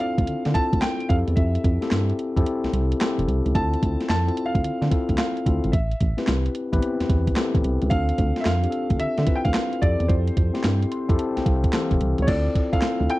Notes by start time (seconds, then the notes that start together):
Already playing: C4 D4 E4 F4 A4
0.00 F5, closed hi-hat
0.18 D2, kick, closed hi-hat
0.27 D3, closed hi-hat
0.45 D3, snare, closed hi-hat
0.54 C4 E4 F4 A4 A5, kick, closed hi-hat
0.73 D2, kick, closed hi-hat
0.81 G5, snare, clap, closed hi-hat
1.00 closed hi-hat
1.09 F2 C4 E4 G4 A4 F5, kick, closed hi-hat
1.28 E2, closed hi-hat
1.36 F2 E5, kick, closed hi-hat
1.55 closed hi-hat
1.64 F2, kick, closed hi-hat
1.81 C4 E4 G4 A4, snare, closed hi-hat
1.91 G2, snare, clap, closed hi-hat
2.10 closed hi-hat
2.19 closed hi-hat
2.36 F2 C4 E4 G4 A4, kick, closed hi-hat
2.46 closed hi-hat
2.64 C2, snare, closed hi-hat
2.73 C2, closed hi-hat
2.92 closed hi-hat
3.00 C4 E4 G4 A4, snare, clap, closed hi-hat
3.18 F1, closed hi-hat
3.28 C2, closed hi-hat
3.46 C#2, closed hi-hat
3.55 D2 C4 E4 F4 A4 A5, kick, closed hi-hat
3.73 closed hi-hat
3.83 D2, kick, closed hi-hat
4.00 snare, closed hi-hat
4.09 F2 A5, snare, clap, closed hi-hat
4.27 C4 E4 F4 A4, closed hi-hat
4.37 closed hi-hat
4.46 F5
4.55 D2, kick, closed hi-hat
4.64 D3, closed hi-hat
4.82 D3, snare, closed hi-hat
4.90 C4 E4 F4 A4, kick, closed hi-hat
5.09 D2, kick, closed hi-hat
5.18 F5, snare, clap, closed hi-hat
5.37 closed hi-hat
5.45 D2 C4 E4 F4 A4, kick, closed hi-hat
5.64 G#1, closed hi-hat
5.72 A1 E5, kick, closed hi-hat
5.91 closed hi-hat
6.00 A1, kick, closed hi-hat
6.17 C4 E4 G4 B4, snare, closed hi-hat
6.27 C2, snare, clap, closed hi-hat
6.46 closed hi-hat
6.55 closed hi-hat
6.72 A1 B3 E4 G4 B4, kick, closed hi-hat
6.78 C4
6.82 closed hi-hat
7.00 E2, snare, closed hi-hat
7.09 E2, kick, closed hi-hat
7.27 kick, closed hi-hat
7.36 C4 E4 G4 A4, snare, clap, closed hi-hat
7.55 A1, kick, closed hi-hat
7.64 C2, closed hi-hat
7.82 C#2, closed hi-hat
7.90 D2 C4 D4 F4 A4 F5, kick, closed hi-hat
8.09 closed hi-hat
8.18 D2, kick, closed hi-hat
8.36 snare, closed hi-hat
8.40 E5
8.45 F2 F5, snare, clap, closed hi-hat
8.62 C4 D4 F4 G4, closed hi-hat
8.70 A4, closed hi-hat
8.90 D2, kick, closed hi-hat
9.00 D3 E5, closed hi-hat
9.18 D3, snare, closed hi-hat
9.26 C4 E4 F4 B4, kick, closed hi-hat
9.36 G5
9.45 D2 F5, kick, closed hi-hat
9.54 snare, clap, closed hi-hat
9.73 closed hi-hat
9.81 F2 C4 E4 G4 A4 D5, kick, closed hi-hat
10.00 E2, closed hi-hat
10.08 F2 C5, kick, closed hi-hat
10.27 closed hi-hat
10.37 F2, kick, closed hi-hat
10.54 C4 E4 G4 C5, snare, closed hi-hat
10.64 G2, snare, clap, closed hi-hat
10.82 closed hi-hat
10.92 C6, closed hi-hat
11.09 F2 C4 E4 G4 A4, kick, closed hi-hat
11.18 A5, closed hi-hat
11.36 C2 G5, snare, closed hi-hat
11.45 C2 F5, kick, closed hi-hat
11.64 kick, closed hi-hat
11.73 E3 C4 G4 A4 F5, snare, clap, closed hi-hat
11.91 F1, kick, closed hi-hat
12.01 C2, closed hi-hat
12.18 C#2 C#5, closed hi-hat
12.27 D2 C4 E4 F4 A4 D5, kick, closed hi-hat, crash
12.55 kick, closed hi-hat
12.72 D2 C4 E4 F4 A4 F5, kick, closed hi-hat
12.82 snare, clap, closed hi-hat
13.00 D2
13.09 C4 E4 F4 A4 G5, closed hi-hat